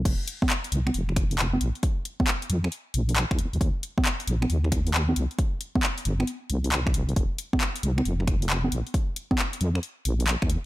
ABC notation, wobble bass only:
X:1
M:4/4
L:1/16
Q:"Swing 16ths" 1/4=135
K:Bbmix
V:1 name="Wobble bass" clef=bass
F,,, z4 z C,, z F,,,6 B,,, z | z6 F,, z3 B,,,3 E,, z E,, | E,, z4 z B,,, z E,,6 C,, z | z6 G,,, z3 C,,6 |
F,,, z4 z C,, z F,,,6 B,,, z | z6 F,, z3 B,,,3 E,, z2 |]